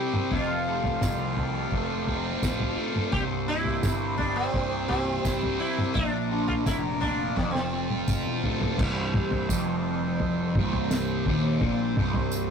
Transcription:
Already playing: G3 E4 G4 C5 E5 C6
0.00 C3
0.14 mid tom
0.31 F1 F2 F4 A4 F5, kick, floor tom
0.68 A3
0.84 floor tom
1.01 C2 F4, kick, snare, mid tom, tambourine
1.37 C4, floor tom
1.72 F1 A3, kick
2.07 C4, floor tom
2.43 D1 F4, kick, snare, tambourine
2.60 floor tom
2.78 A3
2.96 mid tom
3.12 C1 C2 G4 C5 E5, kick, floor tom
3.48 C3 E4
3.65 floor tom
3.83 G1 E4, kick, snare, mid tom, tambourine
4.18 G3 D4, floor tom
4.36 C4
4.54 C1 C3, kick
4.88 G3 C4, floor tom
5.25 C1 E4, kick, snare, tambourine
5.43 floor tom
5.60 C3 E4
5.78 mid tom
5.94 A#1 A#2 F3 D4 A#4 D5 A#5, kick, floor tom
6.31 D4
6.48 F4, floor tom
6.66 F1 E4 A#4, kick, snare, mid tom, tambourine
7.01 D4 F4, floor tom
7.36 F1 F2 C4 A4 C5 A5, kick, snare
7.43 A#3
7.51 C4
7.55 snare
7.73 C4
7.90 high tom
8.08 F1 F4, kick, mid tom, tambourine
8.27 E1
8.44 D1 A3, floor tom
8.61 C1, floor tom
8.78 C1 C2 G3 C4 E4 C5, kick, floor tom, crash
9.14 floor tom, mid tom
9.31 floor tom
9.49 F1 F2, kick, tambourine
10.20 floor tom
10.55 C1 C2, kick, floor tom, mid tom
10.73 floor tom
10.91 snare, tambourine
11.26 D#1 D#2, kick, floor tom
11.61 A#1 A#2, kick, floor tom
11.97 C1 C2, floor tom, mid tom
12.14 floor tom
12.32 tambourine

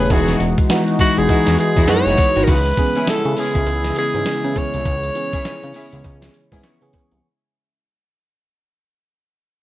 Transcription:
Already playing: E3 A3 B3 C#4 G#4 B4
0.00 A3 B3 C#4 G#4
0.10 E1 E3 G#3 B3 D#4 E4 F#4 G#4, kick, closed hi-hat, tambourine, cowbell
0.28 snare, closed hi-hat
0.40 E1, closed hi-hat, tambourine
0.58 kick, closed hi-hat
0.69 E3 G#3 B3 D#4 F#4, snare, closed hi-hat, tambourine, cowbell
0.88 closed hi-hat
0.99 E1 G#3 D#4 E4 F#4, kick, open hi-hat, tambourine
1.17 E1 G#4, closed hi-hat
1.28 E3 G#3 B3 D#4 E4 F#4, kick, closed hi-hat, tambourine, cowbell
1.47 E2, snare, closed hi-hat
1.58 G#4, closed hi-hat, tambourine
1.76 E2 G#3 D#4 E4 F#4, kick, closed hi-hat
1.88 F#2 E3 G#3 B3 D#4 F#4 C#5, snare, closed hi-hat, tambourine, cowbell
2.06 F#1 G#3 D#4 E4 F#4, closed hi-hat
2.18 kick, open hi-hat
2.36 G#1 G#3 D#4 E4 F#4, closed hi-hat
2.44 C#2 C#3 G#3 B3 E4 A#4, kick, closed hi-hat, crash, tambourine, cowbell
2.50 B4
2.66 closed hi-hat
2.77 E3 B3 C#4 G#4, kick, closed hi-hat, tambourine
2.95 C#3 B3 C#4 E4 G#4, closed hi-hat
3.07 C#3 A4, snare, closed hi-hat, tambourine, cowbell
3.25 C#3, closed hi-hat
3.37 B3 C#4 E4 G#4, open hi-hat, tambourine
3.55 C#2, kick, closed hi-hat
3.66 C#2, closed hi-hat, tambourine, cowbell
3.84 snare, closed hi-hat
3.96 B3 C#4 E4 G#4, closed hi-hat, tambourine
4.14 G#2 E3 B3 C#4 G#4, closed hi-hat
4.26 snare, closed hi-hat, tambourine, cowbell
4.44 C#3 E3 B3 C#4 G#4, closed hi-hat
4.55 E3 B3 C#4 G#4 C#5, kick, closed hi-hat, cowbell
4.74 C2, closed hi-hat
4.85 C#2 C#4, kick, closed hi-hat, tambourine, cowbell
5.03 closed hi-hat
5.15 E3 B3 C#4 G#4, closed hi-hat, tambourine
5.33 C#3 B3 C#4 E4 G#4, kick, closed hi-hat
5.45 C#3, snare, closed hi-hat, tambourine, cowbell
5.63 C#3, closed hi-hat
5.74 B3 C#4 E4 G#4, open hi-hat, tambourine
5.93 C#2, closed hi-hat
6.04 C#2, kick, closed hi-hat, tambourine, cowbell
6.22 snare, closed hi-hat
6.34 closed hi-hat, tambourine
6.52 G#2 E3 B3 C#4 E4 G#4, kick, closed hi-hat
6.63 C#6, snare, closed hi-hat, tambourine, cowbell
6.82 C#3 E3 B3 C#4 G#4, closed hi-hat
6.93 E3 B3 C#4 G#4, kick, closed hi-hat, cowbell
7.11 C2, closed hi-hat

